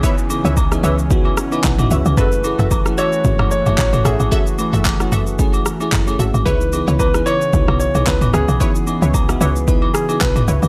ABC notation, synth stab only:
X:1
M:4/4
L:1/16
Q:"Swing 16ths" 1/4=112
K:C#m
V:1 name="Synth stab"
[Bce] z2 [Bce] z2 [Bce] z6 z [Bce] z | [FAe] z2 [FAe] z2 [FAe] z6 z [FAe] z | [FAe] z2 [FAe] z2 [FAe] z6 z [FAe] z | [EBc] z2 [EBc] z2 [EBc] z6 z [EBc] z |
[EBc] z2 [EBc] z2 [EBc] z6 z [EBc] z |]